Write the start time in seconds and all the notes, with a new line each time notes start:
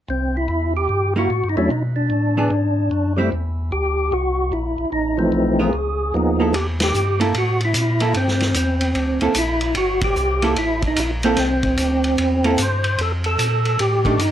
0.09 C2 C4
0.37 E4
0.48 E2
0.77 G4
0.89 G2
1.16 G3 A#3 E4 F#4
1.30 A2
1.44 G2
1.49 D#4
1.57 E2 F#3 A3 C#4 D4 E4
1.71 B2 D#4
1.96 D4
2.10 A2
2.37 E3 B3 D4 G#4
2.51 G#2
2.91 F#2
3.17 G3 A3 C4 E4
3.32 E2
3.72 D2 G4
4.12 C2 F#4
4.52 A#1 E4
4.78 A#1
4.92 A1 D#4
5.17 E3 F3 A3 C4
5.32 B1
5.59 B3 F4 G#4 A#4
5.73 C#2
6.14 D#2 F3 A#3 B3 D#4 G#4
6.40 A#3 E4 A4
6.53 E2 G4, ride
6.80 G4, snare, ride
6.94 G2, hi-hat pedal
7.20 A#3 E4 A4, ride
7.34 A2 F#4, ride
7.61 ride
7.65 E4
7.74 A#2, hi-hat pedal, ride
8.00 A#3 E4 A4, ride
8.14 G2 C4, ride
8.28 snare
8.40 snare, ride
8.54 E2 C4, hi-hat pedal, ride
8.81 ride
8.95 D2, ride
9.21 D2 A#3 E4 A4, ride
9.35 A#1 E4, hi-hat pedal, ride
9.61 ride
9.75 G1 F#4, ride
10.01 G4, kick, ride
10.16 C2, hi-hat pedal
10.42 A#3 E4 A4, ride
10.56 A1 E4, ride
10.82 kick, ride
10.87 D#4
10.96 A#1 E4, hi-hat pedal, ride
11.23 A#3 C4 E4 A4, ride
11.37 C2, snare, ride
11.63 kick, ride
11.77 D2, hi-hat pedal, ride
12.04 ride
12.18 E2, ride
12.44 A#3 E4 A4, ride
12.58 G2, hi-hat pedal, ride
12.62 C5
12.84 ride
12.98 F2 A4, ride
13.24 A4, ride
13.39 A#2, hi-hat pedal, ride
13.65 ride
13.79 A2 G4, ride
14.05 D#3 A3 D4, kick, ride
14.19 G2 D#4, hi-hat pedal, ride